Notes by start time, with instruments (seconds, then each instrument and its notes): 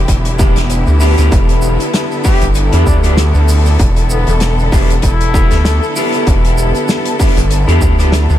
Already playing: string section D3 B3 E4 G4
0.08 analog synth bass E1, kick, closed hi-hat, shaker
0.25 closed hi-hat, shaker
0.38 clean electric guitar B3 D4 E4 G4, kick, cross-stick, shaker
0.56 analog synth bass E1, snare, closed hi-hat, shaker
0.70 closed hi-hat, shaker
0.87 analog synth bass D2, shaker
1.00 clean electric guitar B3 D4 E4 G4, open hi-hat, shaker
1.18 analog synth bass D2, cross-stick, closed hi-hat, shaker
1.32 analog synth bass E1, string section A4, kick, closed hi-hat, shaker
1.49 closed hi-hat, shaker
1.62 shaker
1.80 closed hi-hat, shaker
1.94 snare, closed hi-hat, shaker
2.11 shaker
2.24 clean electric guitar B3 D4 E4 G4, trumpet G4, kick, open hi-hat, shaker
2.42 analog synth bass G1, closed hi-hat, shaker
2.55 closed hi-hat, shaker
2.72 analog synth bass E2, clean electric guitar B3 D4 E4 G4, closed hi-hat, shaker
2.86 analog synth bass D2, trumpet D4, kick, shaker
3.03 clean electric guitar B3 D4 E4 G4, trumpet D4, cross-stick, closed hi-hat, shaker
3.17 snare, closed hi-hat, shaker
3.34 analog synth bass D2, shaker
3.49 open hi-hat, shaker
3.66 cross-stick, shaker
3.79 analog synth bass E1, kick, closed hi-hat, shaker
3.96 closed hi-hat, shaker
4.10 trumpet B3, shaker
4.27 analog synth bass E1, closed hi-hat, shaker
4.40 snare, closed hi-hat, shaker
4.59 shaker
4.72 analog synth bass E1, clean electric guitar B3 D4 E4 G4, kick, cross-stick, open hi-hat, shaker
4.90 closed hi-hat, shaker
5.02 analog synth bass E1, trumpet E4, kick, closed hi-hat, shaker
5.21 closed hi-hat, shaker
5.33 clean electric guitar B3 D4 E4 G4, kick, cross-stick, shaker
5.51 analog synth bass D2, snare, closed hi-hat, shaker
5.65 snare, closed hi-hat, shaker
5.83 shaker
5.96 clean electric guitar B3 D4 E4 G4, open hi-hat, shaker
6.13 cross-stick, closed hi-hat, shaker
6.27 analog synth bass E1, kick, closed hi-hat, shaker
6.45 closed hi-hat, shaker
6.58 shaker
6.75 closed hi-hat, shaker
6.88 snare, shaker
7.05 closed hi-hat, shaker
7.19 clean electric guitar B3 D4 E4 G4, kick, open hi-hat, shaker
7.37 analog synth bass G1, closed hi-hat, shaker
7.51 closed hi-hat, shaker
7.67 analog synth bass E2, clean electric guitar B3 D4 E4 G4, closed hi-hat, shaker
7.82 analog synth bass D2, kick, shaker
7.99 clean electric guitar B3 D4 E4 G4, cross-stick, closed hi-hat, shaker
8.12 snare, closed hi-hat, shaker
8.30 analog synth bass D2, shaker